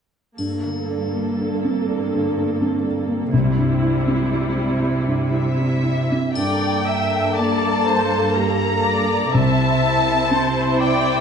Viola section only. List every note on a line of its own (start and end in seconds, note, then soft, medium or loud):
0.38 3.28 A#3 soft
0.38 3.28 A4 soft
3.31 6.11 G3 soft
3.31 6.10 E4 soft
6.33 6.81 D5 soft
6.85 7.35 E5 soft
7.34 7.85 D5 soft
7.84 8.34 C5 soft
8.34 8.83 A#3 soft
8.82 9.32 D5 soft
9.32 10.30 E5 soft
10.30 10.79 C5 soft
10.79 11.21 D5 soft